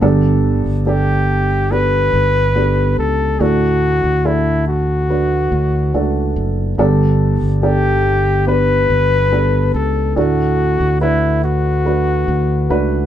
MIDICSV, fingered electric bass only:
0, 0, Header, 1, 2, 480
1, 0, Start_track
1, 0, Key_signature, 2, "major"
1, 0, Tempo, 845070
1, 14, Time_signature, 4, 2, 24, 8
1, 7418, End_track
2, 0, Start_track
2, 0, Title_t, "Fingered electric bass"
2, 0, Program_c, 0, 33
2, 13, Note_on_c, 0, 31, 75
2, 351, Note_off_c, 0, 31, 0
2, 375, Note_on_c, 0, 31, 61
2, 1192, Note_off_c, 0, 31, 0
2, 1213, Note_on_c, 0, 31, 77
2, 1671, Note_off_c, 0, 31, 0
2, 1693, Note_on_c, 0, 37, 64
2, 1916, Note_off_c, 0, 37, 0
2, 1934, Note_on_c, 0, 38, 77
2, 2271, Note_off_c, 0, 38, 0
2, 2294, Note_on_c, 0, 38, 65
2, 3111, Note_off_c, 0, 38, 0
2, 3134, Note_on_c, 0, 38, 68
2, 3357, Note_off_c, 0, 38, 0
2, 3374, Note_on_c, 0, 37, 58
2, 3597, Note_off_c, 0, 37, 0
2, 3614, Note_on_c, 0, 30, 70
2, 3837, Note_off_c, 0, 30, 0
2, 3854, Note_on_c, 0, 31, 71
2, 4191, Note_off_c, 0, 31, 0
2, 4214, Note_on_c, 0, 31, 65
2, 5031, Note_off_c, 0, 31, 0
2, 5054, Note_on_c, 0, 31, 72
2, 5511, Note_off_c, 0, 31, 0
2, 5535, Note_on_c, 0, 37, 74
2, 5758, Note_off_c, 0, 37, 0
2, 5777, Note_on_c, 0, 38, 71
2, 6113, Note_off_c, 0, 38, 0
2, 6136, Note_on_c, 0, 38, 68
2, 6952, Note_off_c, 0, 38, 0
2, 6975, Note_on_c, 0, 38, 71
2, 7198, Note_off_c, 0, 38, 0
2, 7215, Note_on_c, 0, 37, 72
2, 7418, Note_off_c, 0, 37, 0
2, 7418, End_track
0, 0, End_of_file